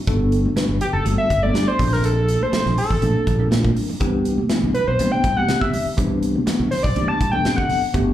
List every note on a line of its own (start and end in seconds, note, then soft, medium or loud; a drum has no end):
0.07 0.45 G1 medium
0.07 0.48 G3 loud
0.07 0.48 B3 loud
0.07 0.48 D4 medium
0.07 0.48 F#4 medium
0.07 0.48 A4 loud
0.07 kick loud
0.07 closed hi-hat medium
0.32 closed hi-hat medium
0.46 high conga medium
0.56 0.77 G3 medium
0.56 0.77 B3 medium
0.56 0.77 D4 medium
0.56 0.77 F#4 medium
0.56 0.77 B4 medium
0.56 muted fingered electric bass stroke soft
0.56 snare loud
0.56 closed hi-hat medium
0.69 0.78 G1 medium
0.80 0.87 F#4 soft
0.80 0.87 G4 medium
0.80 0.87 A4 soft
0.80 closed hi-hat medium
0.80 low conga medium
0.93 1.03 F#1 medium
0.93 1.04 A4 medium
1.04 1.15 G1 medium
1.04 1.26 G3 medium
1.04 1.26 B3 medium
1.04 1.26 D4 medium
1.04 1.26 F#4 medium
1.04 1.26 A4 medium
1.04 closed hi-hat medium
1.04 high conga medium
1.18 1.44 E5 loud
1.29 1.49 G1 medium
1.29 1.36 F#4 soft
1.29 1.36 A4 soft
1.29 kick medium
1.29 closed hi-hat medium
1.42 1.79 G3 medium
1.42 1.79 B3 medium
1.42 1.78 D4 medium
1.42 1.79 F#4 medium
1.42 1.78 A4 medium
1.42 1.69 D5 loud
1.42 high conga medium
1.54 1.64 G2 medium
1.54 snare medium
1.54 closed hi-hat medium
1.68 1.94 C5 medium
1.78 2.36 A#1 medium
1.78 2.40 F3 medium
1.78 2.40 A#3 medium
1.78 2.40 C4 medium
1.78 2.41 D4 medium
1.78 2.41 A4 medium
1.78 kick medium
1.78 open hi-hat medium
1.78 low conga medium
1.92 2.06 A#4 medium
1.92 snare soft
2.04 2.44 A4 loud
2.04 closed hi-hat medium
2.28 closed hi-hat medium
2.41 2.78 C5 medium
2.41 high conga medium
2.52 2.73 F3 medium
2.52 2.73 A#3 medium
2.52 2.73 C4 medium
2.52 2.73 D4 medium
2.52 2.73 A4 medium
2.52 muted fingered electric bass stroke soft
2.52 snare loud
2.52 closed hi-hat medium
2.66 2.75 A#1 medium
2.66 snare soft
2.77 2.84 D4 soft
2.77 3.48 A4 medium
2.77 2.84 A#4 soft
2.77 open hi-hat medium
2.77 low conga medium
2.90 2.99 A1 medium
2.90 kick medium
3.01 3.12 A#1 medium
3.01 3.22 F3 medium
3.01 3.22 A#3 medium
3.01 3.23 C4 medium
3.01 3.22 D4 medium
3.01 3.23 A4 medium
3.01 closed hi-hat medium
3.01 high conga medium
3.27 3.46 A#1 medium
3.27 kick medium
3.27 closed hi-hat medium
3.27 low conga medium
3.39 3.90 F3 medium
3.39 3.90 A#3 medium
3.39 3.90 C4 medium
3.39 3.90 D4 medium
3.39 3.90 A#4 medium
3.39 high conga soft
3.51 3.70 A#2 medium
3.51 snare medium
3.51 closed hi-hat medium
3.51 high conga medium
3.65 kick medium
3.65 high conga medium
3.76 open hi-hat medium
3.76 low conga medium
3.89 muted fingered electric bass stroke soft
3.89 low conga medium
4.00 4.38 C2 medium
4.00 4.41 E3 loud
4.00 4.42 B3 medium
4.00 4.41 C4 medium
4.00 4.42 D4 medium
4.00 4.42 G4 loud
4.00 kick loud
4.00 closed hi-hat medium
4.25 closed hi-hat medium
4.38 high conga medium
4.49 4.70 E3 medium
4.49 4.70 B3 medium
4.49 4.70 C4 medium
4.49 4.70 D4 medium
4.49 4.70 E4 medium
4.49 muted fingered electric bass stroke soft
4.49 snare loud
4.49 closed hi-hat medium
4.63 4.72 C2 medium
4.74 4.80 D4 soft
4.74 4.81 G4 soft
4.74 4.86 B4 medium
4.74 closed hi-hat medium
4.74 low conga medium
4.87 4.97 B1 medium
4.87 5.13 C5 medium
4.99 5.09 C2 medium
4.99 5.20 E3 medium
4.99 5.20 B3 medium
4.99 5.20 C4 medium
4.99 5.20 D4 medium
4.99 5.20 G4 medium
4.99 closed hi-hat medium
4.99 high conga medium
5.12 5.36 G5 medium
5.24 5.43 C2 medium
5.24 kick medium
5.24 closed hi-hat medium
5.36 5.87 E3 medium
5.36 5.87 B3 medium
5.36 5.87 C4 medium
5.36 5.87 D4 medium
5.36 5.87 G4 medium
5.36 5.63 F#5 medium
5.36 high conga medium
5.48 5.67 C3 medium
5.48 snare medium
5.48 closed hi-hat medium
5.61 5.86 E5 medium
5.61 kick medium
5.73 open hi-hat medium
5.73 low conga medium
5.86 muted fingered electric bass stroke soft
5.97 6.35 C2 medium
5.97 6.38 E3 medium
5.97 6.38 B3 medium
5.97 6.38 C4 loud
5.97 6.38 D4 medium
5.97 6.38 G4 loud
5.97 kick loud
5.97 closed hi-hat medium
6.23 closed hi-hat medium
6.36 high conga medium
6.46 6.67 E3 medium
6.46 6.67 B3 medium
6.46 6.67 C4 medium
6.46 6.67 D4 medium
6.46 6.67 F#4 medium
6.46 muted fingered electric bass stroke soft
6.46 snare loud
6.46 closed hi-hat medium
6.60 6.69 C2 medium
6.71 6.77 D4 soft
6.71 6.77 F#4 soft
6.71 6.83 C5 medium
6.71 snare soft
6.71 open hi-hat medium
6.71 low conga medium
6.83 6.93 B1 medium
6.83 7.10 D5 medium
6.83 kick medium
6.95 7.06 C2 medium
6.95 7.16 E3 medium
6.95 7.16 B3 medium
6.95 7.16 C4 medium
6.95 7.16 D4 medium
6.95 7.16 G4 medium
6.95 closed hi-hat medium
6.95 high conga medium
7.08 7.31 A5 loud
7.20 7.39 C2 medium
7.20 kick medium
7.20 closed hi-hat medium
7.32 7.84 E3 medium
7.32 7.84 B3 medium
7.32 7.84 C4 medium
7.32 7.84 D4 medium
7.32 7.84 A4 medium
7.32 7.58 G5 medium
7.32 high conga medium
7.45 7.64 C3 medium
7.45 snare medium
7.45 closed hi-hat medium
7.56 7.82 F#5 medium
7.56 kick medium
7.69 open hi-hat medium
7.69 low conga medium
7.83 muted fingered electric bass stroke soft
7.94 8.13 G1 medium
7.94 8.13 A3 medium
7.94 8.13 B3 medium
7.94 8.13 D4 loud
7.94 8.13 F#4 loud
7.94 8.13 G4 loud
7.94 kick loud
7.94 closed hi-hat medium